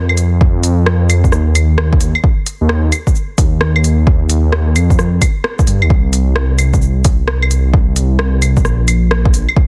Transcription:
Already playing: detuned saw bass F2
0.09 claves
0.17 open hi-hat, shaker
0.41 kick
0.63 open hi-hat, shaker
0.86 cross-stick
1.10 open hi-hat, claves, shaker
1.24 kick, shaker
1.32 detuned saw bass D#2, cross-stick, shaker
1.55 open hi-hat, claves, shaker
1.78 cross-stick
1.93 kick
2.01 open hi-hat, shaker
2.15 claves
2.24 kick
2.46 open hi-hat, shaker
2.61 detuned saw bass D#2
2.69 cross-stick
2.92 open hi-hat, claves, shaker
3.07 kick, shaker
3.15 shaker
3.38 detuned saw bass D#2, kick, open hi-hat, shaker
3.61 cross-stick
3.76 claves
3.84 open hi-hat, shaker
4.07 kick
4.30 open hi-hat, shaker
4.52 cross-stick
4.75 detuned saw bass F2, open hi-hat, claves, shaker
4.90 kick, shaker
4.99 cross-stick, shaker
5.22 kick, open hi-hat, claves, shaker
5.44 cross-stick
5.59 kick, shaker
5.67 detuned saw bass G2, open hi-hat, shaker
5.82 detuned saw bass D#2, claves
5.90 detuned saw bass C2, kick
6.13 open hi-hat, shaker
6.36 cross-stick
6.59 open hi-hat, claves, shaker
6.74 kick, shaker
6.82 shaker
7.05 detuned saw bass C2, kick, open hi-hat, shaker
7.28 cross-stick
7.42 claves
7.51 open hi-hat, shaker
7.74 kick
7.96 open hi-hat, shaker
8.19 cross-stick
8.42 open hi-hat, claves, shaker
8.57 kick, shaker
8.65 detuned saw bass A#1, cross-stick, shaker
8.88 open hi-hat, claves, shaker
9.11 cross-stick
9.25 kick
9.34 open hi-hat, shaker
9.49 claves
9.56 kick

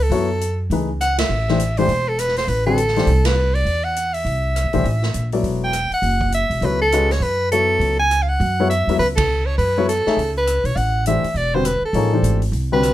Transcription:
0.03 soprano saxophone A4
0.10 upright bass F#2, grand piano F#3 B3 E4 A4 C#5, open hi-hat
0.41 closed hi-hat
0.70 upright bass C#2, grand piano E3 A3 D#4 G#4 B4, open hi-hat
1.01 soprano saxophone F#5, cross-stick, closed hi-hat
1.18 soprano saxophone E5, snare, ride
1.29 upright bass A1
1.48 grand piano E3 A3 D4 G4 C5, snare
1.60 closed hi-hat
1.77 grand piano E3 A3 D4 G4 C5, soprano saxophone C5, open hi-hat
1.88 upright bass E1, open hi-hat
2.09 soprano saxophone A4
2.18 soprano saxophone B4, cross-stick, closed hi-hat
2.28 snare
2.36 soprano saxophone C5, snare, open hi-hat
2.48 upright bass A1, soprano saxophone B4, open hi-hat
2.66 grand piano D3 G3 C4 F#4 B4, soprano saxophone A4
2.78 closed hi-hat
2.88 snare
2.96 grand piano E3 A3 D4 G4 C5, snare, open hi-hat
3.06 upright bass C2, open hi-hat
3.25 soprano saxophone B4, snare, ride
3.55 soprano saxophone D5, open hi-hat
3.65 upright bass E2, open hi-hat
3.84 soprano saxophone F#5
3.96 closed hi-hat
4.14 soprano saxophone E5, open hi-hat
4.25 upright bass C2, open hi-hat
4.56 cross-stick, closed hi-hat
4.64 upright bass D2
4.73 upright bass B1, grand piano E3 A3 D4 G4 C5, open hi-hat
4.84 upright bass A1, open hi-hat
5.03 snare
5.14 upright bass A#1, closed hi-hat
5.32 grand piano F#3 B3 E4 A4 D5, open hi-hat
5.43 upright bass E1, open hi-hat
5.64 soprano saxophone G5
5.73 cross-stick, closed hi-hat
5.90 soprano saxophone F#5, muted upright bass stroke, open hi-hat
6.02 upright bass F#1, open hi-hat
6.21 kick
6.32 soprano saxophone E5, closed hi-hat
6.50 upright bass E1, open hi-hat
6.61 upright bass C#2, grand piano F#3 B3 E4 A4 C#5, open hi-hat
6.65 soprano saxophone B4
6.82 soprano saxophone A4
6.92 grand piano G#3 C#4 F#4 B4 D#5, cross-stick, closed hi-hat
7.11 soprano saxophone C#5, snare, open hi-hat
7.20 upright bass F#2, soprano saxophone B4, open hi-hat
7.52 grand piano F#3 B3 E4 A4 C#5, soprano saxophone A4, closed hi-hat
7.79 upright bass C#2, open hi-hat
7.99 soprano saxophone G#5
8.11 cross-stick, closed hi-hat
8.22 soprano saxophone F5
8.29 soprano saxophone F#5
8.40 upright bass F#2, open hi-hat
8.60 grand piano F#3 B3 E4 A4 C#5
8.70 soprano saxophone E5, closed hi-hat
8.87 upright bass E2, grand piano F#3 B3 E4 A4 E5, open hi-hat
8.99 upright bass C#2, soprano saxophone B4, open hi-hat
9.16 soprano saxophone A4, kick, ride
9.46 soprano saxophone C#5
9.58 upright bass F#2, soprano saxophone B4, open hi-hat
9.77 grand piano F#3 B3 E4 A4 C#5
9.89 soprano saxophone A4, closed hi-hat
10.06 grand piano A3 D#4 G#4 C#5 E5, muted upright bass stroke, snare
10.17 upright bass C#2, open hi-hat
10.38 soprano saxophone B4
10.47 cross-stick, closed hi-hat
10.64 upright bass B1, soprano saxophone C#5, open hi-hat
10.76 upright bass A1, soprano saxophone F#5, open hi-hat
11.06 grand piano E3 A3 D4 G4 C5, soprano saxophone E5, closed hi-hat
11.24 muted upright bass stroke, open hi-hat
11.34 upright bass E1, soprano saxophone D5, open hi-hat
11.54 grand piano D3 G3 C4 F#4 B4, soprano saxophone C5
11.65 soprano saxophone B4, cross-stick, closed hi-hat
11.81 soprano saxophone A4, muted upright bass stroke
11.93 upright bass A1, grand piano F3 A#3 D#4 G#4 C#5, open hi-hat
12.13 grand piano E3 A3 D4 G4 C5
12.22 upright bass G#1, closed hi-hat
12.42 open hi-hat
12.52 upright bass C2, open hi-hat
12.72 grand piano D3 G3 C4 F#4 B4, soprano saxophone B4
12.83 cross-stick, closed hi-hat

